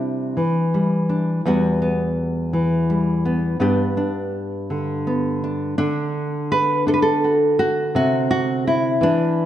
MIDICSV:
0, 0, Header, 1, 2, 480
1, 0, Start_track
1, 0, Tempo, 721154
1, 964, Time_signature, 6, 3, 24, 8
1, 4809, Tempo, 710900
1, 6315, End_track
2, 0, Start_track
2, 0, Title_t, "Nylon-string guitar"
2, 0, Program_c, 0, 24
2, 0, Note_on_c, 0, 48, 70
2, 0, Note_on_c, 0, 55, 59
2, 0, Note_on_c, 0, 62, 57
2, 0, Note_on_c, 0, 64, 64
2, 244, Note_on_c, 0, 52, 60
2, 246, Note_off_c, 0, 48, 0
2, 491, Note_off_c, 0, 55, 0
2, 494, Note_on_c, 0, 55, 47
2, 720, Note_off_c, 0, 62, 0
2, 728, Note_on_c, 0, 62, 51
2, 934, Note_off_c, 0, 52, 0
2, 937, Note_off_c, 0, 62, 0
2, 968, Note_on_c, 0, 40, 69
2, 969, Note_off_c, 0, 64, 0
2, 971, Note_off_c, 0, 55, 0
2, 974, Note_on_c, 0, 55, 63
2, 976, Note_on_c, 0, 59, 56
2, 983, Note_on_c, 0, 66, 65
2, 1208, Note_off_c, 0, 59, 0
2, 1210, Note_on_c, 0, 59, 53
2, 1686, Note_on_c, 0, 52, 62
2, 1920, Note_off_c, 0, 55, 0
2, 1929, Note_on_c, 0, 55, 48
2, 2158, Note_off_c, 0, 59, 0
2, 2166, Note_on_c, 0, 59, 51
2, 2369, Note_off_c, 0, 52, 0
2, 2374, Note_off_c, 0, 66, 0
2, 2388, Note_off_c, 0, 59, 0
2, 2390, Note_off_c, 0, 40, 0
2, 2393, Note_off_c, 0, 55, 0
2, 2393, Note_on_c, 0, 43, 61
2, 2396, Note_on_c, 0, 59, 59
2, 2402, Note_on_c, 0, 62, 56
2, 2407, Note_on_c, 0, 67, 61
2, 2636, Note_off_c, 0, 62, 0
2, 2644, Note_on_c, 0, 62, 54
2, 3129, Note_on_c, 0, 50, 59
2, 3364, Note_off_c, 0, 59, 0
2, 3374, Note_on_c, 0, 59, 46
2, 3610, Note_off_c, 0, 62, 0
2, 3619, Note_on_c, 0, 62, 50
2, 3818, Note_off_c, 0, 43, 0
2, 3824, Note_off_c, 0, 59, 0
2, 3825, Note_off_c, 0, 62, 0
2, 3825, Note_off_c, 0, 67, 0
2, 3844, Note_off_c, 0, 50, 0
2, 3847, Note_on_c, 0, 62, 87
2, 3852, Note_on_c, 0, 50, 67
2, 4338, Note_on_c, 0, 71, 99
2, 4563, Note_off_c, 0, 62, 0
2, 4571, Note_on_c, 0, 62, 56
2, 4575, Note_off_c, 0, 71, 0
2, 4579, Note_on_c, 0, 69, 88
2, 4614, Note_off_c, 0, 69, 0
2, 4617, Note_on_c, 0, 71, 70
2, 4663, Note_off_c, 0, 71, 0
2, 4675, Note_on_c, 0, 69, 86
2, 4821, Note_on_c, 0, 66, 40
2, 5048, Note_off_c, 0, 66, 0
2, 5057, Note_on_c, 0, 66, 98
2, 5264, Note_off_c, 0, 62, 0
2, 5294, Note_off_c, 0, 66, 0
2, 5297, Note_on_c, 0, 48, 72
2, 5298, Note_off_c, 0, 69, 0
2, 5305, Note_on_c, 0, 66, 106
2, 5531, Note_off_c, 0, 66, 0
2, 5539, Note_on_c, 0, 66, 95
2, 5775, Note_off_c, 0, 66, 0
2, 5787, Note_on_c, 0, 64, 90
2, 6011, Note_off_c, 0, 50, 0
2, 6012, Note_off_c, 0, 48, 0
2, 6014, Note_on_c, 0, 52, 66
2, 6029, Note_on_c, 0, 62, 97
2, 6315, Note_off_c, 0, 52, 0
2, 6315, Note_off_c, 0, 62, 0
2, 6315, Note_off_c, 0, 64, 0
2, 6315, End_track
0, 0, End_of_file